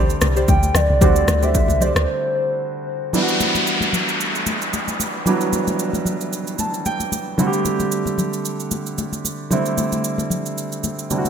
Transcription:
0.00 0.15 D2 loud
0.00 0.97 D3 medium
0.00 0.98 G3 medium
0.00 0.98 A3 medium
0.00 0.98 C4 medium
0.00 1.02 G4 medium
0.10 shaker medium
0.21 0.45 C2 loud
0.21 cross-stick medium
0.21 high conga medium
0.21 shaker medium
0.36 0.47 G4 medium
0.36 0.47 C5 medium
0.36 0.47 D5 medium
0.36 shaker medium
0.48 0.71 D2 loud
0.48 0.77 G5 loud
0.48 kick loud
0.48 high conga medium
0.48 shaker medium
0.63 high conga soft
0.63 shaker medium
0.75 0.88 D2 medium
0.75 1.45 D5 loud
0.75 cross-stick medium
0.75 high conga medium
0.75 low conga medium
0.75 shaker loud
0.90 1.00 C2 medium
1.01 1.25 D2 loud
1.01 3.10 D3 medium
1.01 3.10 G3 medium
1.01 3.10 A3 medium
1.01 3.11 C4 medium
1.01 3.11 F#4 medium
1.01 1.39 G4 medium
1.01 1.39 C5 medium
1.01 1.39 D5 loud
1.01 kick loud
1.01 low conga medium
1.01 shaker medium
1.16 shaker medium
1.28 1.64 D2 loud
1.28 cross-stick medium
1.28 high conga medium
1.28 shaker medium
1.42 1.78 G4 medium
1.42 1.78 C5 medium
1.42 1.79 D5 medium
1.42 1.84 E5 loud
1.42 high conga medium
1.42 shaker medium
1.55 kick loud
1.55 shaker medium
1.68 1.92 C2 medium
1.68 high conga medium
1.68 shaker medium
1.81 2.06 G4 medium
1.81 2.06 C5 medium
1.81 2.06 D5 medium
1.81 1.98 D5 loud
1.81 low conga medium
1.81 shaker medium
1.96 2.06 D2 medium
1.96 2.88 C5 medium
1.96 cross-stick loud
1.96 shaker medium
3.13 5.22 E3 medium
3.13 5.22 G3 medium
3.13 5.23 B3 medium
3.13 5.23 D4 medium
3.13 3.22 E4 medium
3.13 downlifter medium
3.13 low conga medium
3.13 shaker medium
3.22 5.27 F#4 medium
3.28 shaker medium
3.40 high conga medium
3.40 shaker medium
3.55 high conga medium
3.55 shaker medium
3.67 shaker medium
3.81 high conga medium
3.81 shaker soft
3.93 low conga medium
3.93 shaker medium
4.09 shaker soft
4.21 shaker medium
4.35 shaker soft
4.46 high conga medium
4.46 shaker medium
4.62 shaker soft
4.73 high conga medium
4.73 shaker medium
4.88 high conga soft
4.88 shaker medium
5.00 high conga medium
5.00 shaker medium
5.25 7.34 E3 medium
5.25 7.36 F#3 medium
5.25 7.35 G3 medium
5.25 7.35 B3 medium
5.25 7.35 D4 medium
5.25 low conga medium
5.25 shaker medium
5.41 shaker medium
5.53 high conga medium
5.53 shaker medium
5.67 high conga medium
5.67 shaker medium
5.79 shaker medium
5.93 high conga medium
5.93 shaker medium
6.05 low conga medium
6.05 shaker medium
6.21 shaker medium
6.33 shaker medium
6.47 shaker soft
6.59 6.84 A5 medium
6.59 high conga medium
6.59 shaker medium
6.74 shaker medium
6.85 7.35 G5 medium
6.85 high conga medium
6.85 shaker medium
7.00 high conga soft
7.00 shaker medium
7.12 high conga medium
7.12 shaker medium
7.38 9.47 D3 medium
7.38 9.47 G3 medium
7.38 9.47 A3 medium
7.38 9.48 C4 medium
7.38 7.47 F#4 medium
7.38 low conga medium
7.38 shaker medium
7.47 9.51 G4 medium
7.53 shaker medium
7.65 high conga medium
7.65 shaker medium
7.80 high conga medium
7.80 shaker medium
7.92 shaker medium
8.06 high conga medium
8.06 shaker medium
8.18 low conga medium
8.18 shaker medium
8.33 shaker soft
8.45 shaker medium
8.60 shaker soft
8.71 high conga medium
8.71 shaker medium
8.86 shaker soft
8.98 high conga medium
8.98 shaker medium
9.13 high conga soft
9.13 shaker medium
9.25 high conga medium
9.25 shaker medium
9.50 11.07 D3 medium
9.50 11.07 G3 medium
9.50 11.08 A3 medium
9.50 11.08 C4 medium
9.50 11.08 E4 medium
9.50 low conga medium
9.50 shaker medium
9.66 shaker medium
9.78 high conga medium
9.78 shaker medium
9.92 high conga medium
9.92 shaker medium
10.04 shaker medium
10.18 high conga medium
10.18 shaker medium
10.30 low conga medium
10.30 shaker medium
10.46 shaker soft
10.58 shaker medium
10.72 shaker soft
10.84 high conga medium
10.84 shaker medium
10.99 shaker soft
11.10 11.29 D3 medium
11.10 11.29 G3 medium
11.10 11.29 A3 medium
11.10 11.29 C4 medium
11.10 11.18 E4 medium
11.10 high conga medium
11.10 shaker medium
11.18 11.29 F#4 medium
11.25 high conga soft
11.25 shaker medium

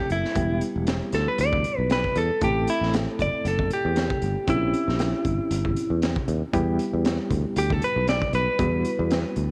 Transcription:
0.00 0.32 A3 medium
0.00 0.32 C4 medium
0.00 0.32 E4 medium
0.00 0.10 G4 medium
0.00 0.32 A4 loud
0.10 0.24 F#1 medium
0.10 0.61 E4 loud
0.10 closed hi-hat medium
0.25 snare soft
0.35 0.60 E1 loud
0.35 2.38 G3 medium
0.35 2.38 B3 medium
0.35 2.38 E4 medium
0.35 2.38 G4 medium
0.35 kick loud
0.35 closed hi-hat medium
0.61 closed hi-hat medium
0.76 1.00 E1 medium
0.87 snare loud
0.87 closed hi-hat medium
1.12 1.26 D2 loud
1.12 1.28 A4 medium
1.12 snare soft
1.12 closed hi-hat medium
1.27 1.39 B4 medium
1.27 muted fretless electric bass stroke soft
1.38 1.63 D2 medium
1.38 1.78 D5 medium
1.38 closed hi-hat medium
1.53 kick medium
1.64 closed hi-hat medium
1.78 2.03 B1 medium
1.78 1.90 B4 medium
1.90 2.16 B4 medium
1.90 snare loud
1.90 closed hi-hat medium
2.04 kick medium
2.16 2.29 E2 medium
2.16 2.42 A4 medium
2.16 closed hi-hat medium
2.41 2.66 A1 loud
2.41 4.44 A3 medium
2.41 4.44 C4 medium
2.41 4.44 E4 medium
2.41 2.68 G4 medium
2.41 4.44 A4 medium
2.41 kick loud
2.41 closed hi-hat medium
2.67 2.94 E4 medium
2.67 closed hi-hat medium
2.81 3.06 A1 medium
2.81 snare soft
2.93 snare loud
2.93 closed hi-hat medium
3.19 3.32 F#1 medium
3.19 3.46 D5 medium
3.19 kick medium
3.19 closed hi-hat medium
3.33 muted fretless electric bass stroke soft
3.45 3.69 F#1 medium
3.45 3.71 A4 medium
3.45 closed hi-hat medium
3.59 kick medium
3.70 4.47 G4 medium
3.70 closed hi-hat medium
3.85 4.09 E2 medium
3.96 snare medium
3.96 closed hi-hat medium
4.10 kick loud
4.22 4.35 G1 medium
4.22 closed hi-hat medium
4.47 4.72 A#1 loud
4.47 6.49 C4 medium
4.47 6.50 C#4 medium
4.47 6.50 E4 medium
4.47 5.99 E4 medium
4.47 6.50 G4 medium
4.47 kick loud
4.47 closed hi-hat medium
4.73 closed hi-hat medium
4.88 5.12 A#1 medium
4.88 snare soft
4.99 snare loud
4.99 closed hi-hat medium
5.25 5.38 G1 medium
5.25 kick medium
5.25 closed hi-hat medium
5.39 muted fretless electric bass stroke soft
5.51 5.75 G1 loud
5.51 closed hi-hat medium
5.65 kick medium
5.76 closed hi-hat medium
5.90 6.15 E2 medium
6.02 snare loud
6.02 closed hi-hat medium
6.16 kick medium
6.28 6.41 D#2 medium
6.28 closed hi-hat medium
6.53 6.78 E2 loud
6.53 8.55 G3 medium
6.53 8.55 B3 medium
6.53 8.55 E4 medium
6.53 8.55 G4 loud
6.53 kick loud
6.53 closed hi-hat medium
6.79 closed hi-hat medium
6.93 7.18 E2 medium
7.05 snare loud
7.05 closed hi-hat medium
7.30 7.44 D2 loud
7.30 kick medium
7.30 closed hi-hat medium
7.45 muted fretless electric bass stroke soft
7.56 7.81 D2 loud
7.56 7.72 G4 medium
7.56 closed hi-hat medium
7.70 7.83 A4 medium
7.70 kick medium
7.82 8.08 B4 medium
7.82 closed hi-hat medium
7.96 8.20 B1 medium
8.07 8.33 D5 medium
8.07 snare loud
8.07 closed hi-hat medium
8.22 kick medium
8.33 8.47 B1 loud
8.33 9.34 B4 medium
8.33 closed hi-hat medium
8.59 8.83 E2 loud
8.59 9.51 G3 medium
8.59 9.51 B3 medium
8.59 9.51 E4 medium
8.59 9.51 F#4 medium
8.59 kick loud
8.59 closed hi-hat medium
8.85 closed hi-hat medium
8.99 9.23 E2 medium
9.11 snare loud
9.11 closed hi-hat medium
9.36 9.50 D2 medium
9.36 closed hi-hat soft

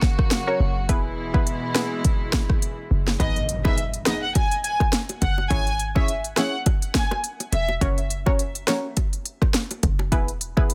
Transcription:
0.00 0.85 C#3 medium
0.00 0.87 F#3 medium
0.00 0.87 A#3 medium
0.00 0.87 F#4 medium
0.00 kick medium
0.00 snare medium
0.19 kick medium
0.19 cross-stick medium
0.30 cross-stick medium
0.30 snare loud
0.30 closed hi-hat medium
0.47 0.63 C#4 medium
0.47 0.63 F#4 medium
0.47 0.63 A#4 medium
0.47 0.63 C#5 medium
0.60 0.91 F#1 medium
0.89 1.72 E1 loud
0.89 3.18 B2 medium
0.89 3.17 E3 medium
0.89 3.18 G#3 medium
0.89 1.30 B3 medium
0.89 1.30 E4 medium
0.89 3.18 E4 medium
0.89 1.30 G#4 medium
0.89 1.30 B4 loud
0.89 kick loud
0.89 closed hi-hat medium
1.34 1.72 B3 medium
1.34 1.72 E4 medium
1.34 1.73 G#4 medium
1.34 1.73 B4 medium
1.34 kick medium
1.47 closed hi-hat medium
1.75 2.02 B3 medium
1.75 2.02 E4 medium
1.75 2.02 G#4 medium
1.75 2.03 B4 medium
1.75 cross-stick medium
1.75 snare loud
2.04 kick medium
2.04 closed hi-hat medium
2.32 kick medium
2.32 cross-stick medium
2.32 snare loud
2.49 kick medium
2.49 cross-stick medium
2.62 closed hi-hat medium
2.91 3.17 F#1 medium
3.07 snare medium
3.20 4.02 G#1 loud
3.20 3.38 B3 loud
3.20 3.38 D#4 medium
3.20 3.38 G#4 medium
3.20 3.38 B4 loud
3.20 3.33 D#5 loud
3.20 kick loud
3.20 closed hi-hat medium
3.20 impact medium
3.20 high bongo medium
3.36 closed hi-hat soft
3.49 closed hi-hat medium
3.65 3.80 B3 medium
3.65 3.80 D#4 medium
3.65 3.80 G#4 medium
3.65 3.80 B4 medium
3.65 3.75 E5 medium
3.65 kick medium
3.65 high bongo medium
3.78 closed hi-hat medium
3.94 closed hi-hat medium
4.05 4.25 B3 medium
4.05 4.25 D#4 medium
4.05 4.25 G#4 medium
4.05 4.25 B4 medium
4.05 4.19 D#5 medium
4.05 cross-stick loud
4.05 snare loud
4.05 closed hi-hat medium
4.05 low bongo medium
4.22 4.33 F#5 medium
4.35 4.48 G#5 medium
4.35 kick medium
4.35 closed hi-hat medium
4.35 high bongo medium
4.51 closed hi-hat medium
4.64 4.77 G#5 medium
4.64 closed hi-hat medium
4.80 kick medium
4.80 cross-stick medium
4.80 high bongo medium
4.92 cross-stick medium
4.92 snare loud
4.92 closed hi-hat medium
5.09 closed hi-hat medium
5.09 high bongo soft
5.22 5.48 F#1 medium
5.22 5.35 F#5 medium
5.22 kick medium
5.22 closed hi-hat medium
5.22 low bongo medium
5.38 high bongo medium
5.50 6.33 G#1 loud
5.50 5.69 C#4 medium
5.50 5.69 E4 medium
5.50 5.69 G#4 medium
5.50 5.69 C#5 loud
5.50 5.74 G#5 loud
5.50 kick loud
5.50 closed hi-hat medium
5.50 high bongo medium
5.67 closed hi-hat medium
5.79 closed hi-hat medium
5.95 6.11 C#4 medium
5.95 6.11 E4 medium
5.95 6.11 G#4 medium
5.95 6.11 C#5 medium
5.95 6.06 E5 medium
5.95 kick medium
5.95 high bongo medium
6.08 closed hi-hat medium
6.24 closed hi-hat medium
6.36 6.55 C#4 medium
6.36 6.55 E4 medium
6.36 6.56 G#4 medium
6.36 6.56 C#5 medium
6.36 6.50 F#5 medium
6.36 cross-stick loud
6.36 snare loud
6.36 closed hi-hat medium
6.36 low bongo medium
6.66 kick loud
6.66 closed hi-hat medium
6.66 high bongo medium
6.82 closed hi-hat medium
6.94 7.08 G#5 medium
6.94 kick medium
6.94 cross-stick medium
6.94 snare loud
6.94 closed hi-hat medium
7.11 cross-stick medium
7.11 high bongo medium
7.24 closed hi-hat medium
7.40 closed hi-hat medium
7.40 high bongo medium
7.52 7.79 E1 loud
7.52 7.65 E5 medium
7.52 closed hi-hat medium
7.52 low bongo medium
7.69 high bongo medium
7.81 8.64 F#1 loud
7.81 8.00 C#4 loud
7.81 8.00 F#4 medium
7.81 8.00 A#4 medium
7.81 8.00 C#5 loud
7.81 kick loud
7.81 closed hi-hat medium
7.81 high bongo medium
7.98 closed hi-hat medium
8.10 closed hi-hat medium
8.26 8.42 C#4 medium
8.26 8.42 F#4 medium
8.26 8.42 A#4 medium
8.26 8.42 C#5 medium
8.26 kick medium
8.26 high bongo medium
8.39 closed hi-hat medium
8.55 closed hi-hat medium
8.67 8.86 C#4 medium
8.67 8.86 F#4 medium
8.67 8.86 A#4 medium
8.67 8.86 C#5 medium
8.67 cross-stick loud
8.67 snare loud
8.67 closed hi-hat medium
8.67 low bongo medium
8.97 kick loud
8.97 closed hi-hat medium
8.97 high bongo medium
9.13 closed hi-hat medium
9.25 closed hi-hat medium
9.42 kick medium
9.42 cross-stick medium
9.42 high bongo medium
9.53 cross-stick medium
9.53 snare loud
9.53 closed hi-hat medium
9.71 closed hi-hat medium
9.71 high bongo medium
9.83 10.14 F#1 loud
9.83 kick medium
9.83 closed hi-hat medium
9.83 low bongo medium
9.99 high bongo medium
10.12 10.74 E1 loud
10.12 10.30 B3 medium
10.12 10.30 E4 medium
10.12 10.31 G#4 medium
10.12 10.31 B4 loud
10.12 kick loud
10.12 closed hi-hat medium
10.12 high bongo medium
10.28 closed hi-hat medium
10.41 closed hi-hat medium
10.57 10.72 B3 medium
10.57 10.72 E4 medium
10.57 10.73 G#4 medium
10.57 10.73 B4 medium
10.57 kick medium
10.57 high bongo medium
10.70 closed hi-hat medium

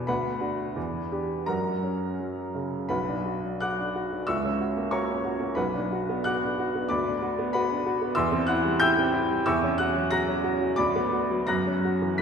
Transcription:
0.00 0.12 E2 medium
0.00 0.11 B2 medium
0.00 0.11 B3 medium
0.00 0.11 D4 medium
0.00 0.11 D5 medium
0.00 0.07 B5 medium
0.00 0.11 D6 medium
0.07 0.74 D2 medium
0.07 1.43 B4 medium
0.07 1.43 F#5 medium
0.07 1.47 B5 medium
0.41 0.72 D4 soft
0.41 0.72 F#4 medium
0.76 1.45 E2 medium
1.11 1.44 D4 medium
1.11 1.44 G4 medium
1.46 2.86 F#2 medium
1.46 2.51 A#4 medium
1.46 2.51 F#5 soft
1.46 2.54 A#5 medium
1.83 2.40 C#4 soft
2.20 2.76 F#3 medium
2.55 2.90 C#3 soft
2.89 4.23 B1 medium
2.89 3.57 B4 medium
2.89 3.57 F#5 medium
2.89 3.60 B5 medium
3.08 3.37 D4 medium
3.25 3.54 F#4 medium
3.44 3.71 F#3 soft
3.60 3.89 F#4 medium
3.60 4.23 F#5 medium
3.60 4.23 D6 medium
3.60 4.27 F#6 medium
3.80 4.05 D4 medium
3.95 4.21 F#4 medium
4.12 4.28 F#3 soft
4.27 5.53 C#2 medium
4.27 4.88 E5 medium
4.27 4.88 C#6 medium
4.27 4.91 E6 medium
4.45 4.70 C#4 medium
4.60 4.86 F#4 medium
4.77 5.02 A#3 medium
4.91 5.18 F#4 medium
4.91 5.53 C#5 medium
4.91 5.53 A#5 medium
4.91 5.56 C#6 medium
5.09 5.34 C#4 medium
5.25 5.50 F#4 medium
5.40 5.56 A#3 medium
5.55 6.86 B1 medium
5.55 6.21 B4 medium
5.55 6.21 F#5 medium
5.55 6.25 B5 medium
5.74 6.02 D4 medium
5.92 6.19 F#4 medium
6.09 6.36 B3 medium
6.24 6.52 F#4 medium
6.24 6.86 F#5 medium
6.24 6.86 D6 medium
6.24 6.90 F#6 loud
6.43 6.68 D4 medium
6.59 6.84 F#4 medium
6.75 6.91 B3 medium
6.89 8.13 D2 medium
6.89 7.50 D5 medium
6.89 7.50 B5 medium
6.89 7.53 D6 medium
7.07 7.32 D4 medium
7.22 7.48 F#4 medium
7.39 7.64 B3 medium
7.53 7.80 F#4 medium
7.53 8.13 B4 medium
7.53 8.13 F#5 medium
7.53 8.16 B5 medium
7.71 7.95 D4 medium
7.86 8.11 F#4 medium
8.02 8.17 B3 medium
8.15 9.42 E2 medium
8.15 8.46 E5 medium
8.15 8.46 C6 medium
8.15 8.48 E6 loud
8.32 8.58 C4 medium
8.47 8.74 E4 medium
8.47 8.79 F#5 medium
8.47 8.80 F#6 loud
8.65 8.91 G3 medium
8.80 9.07 E4 medium
8.80 9.42 G5 medium
8.80 9.42 E6 medium
8.80 9.45 G6 loud
8.97 9.23 C4 medium
9.13 9.39 E4 medium
9.30 9.46 G3 medium
9.46 10.74 E2 medium
9.46 9.77 E5 medium
9.46 9.77 C#6 medium
9.46 9.79 E6 loud
9.63 9.89 C#4 medium
9.78 10.06 F#4 medium
9.78 10.10 F#5 medium
9.78 10.10 F#6 loud
9.96 10.22 F#3 medium
10.11 10.38 F#4 medium
10.11 10.74 A#5 medium
10.11 10.74 F#6 medium
10.11 10.77 A#6 loud
10.28 10.54 C#4 medium
10.44 10.71 F#4 medium
10.61 10.78 F#3 medium
10.76 11.47 D2 medium
10.76 11.44 D5 medium
10.76 11.44 B5 medium
10.76 11.48 D6 loud
10.96 11.24 B3 medium
11.12 11.41 F#4 medium
11.31 11.49 F#3 medium
11.47 12.17 F#2 medium
11.47 12.14 A#5 medium
11.47 12.15 F#6 medium
11.47 12.18 A#6 medium
11.66 11.94 C#4 medium
11.85 12.12 F#4 medium
12.02 12.19 E3 soft
12.18 12.22 B5 medium
12.18 12.22 F#6 medium
12.18 12.22 B6 medium

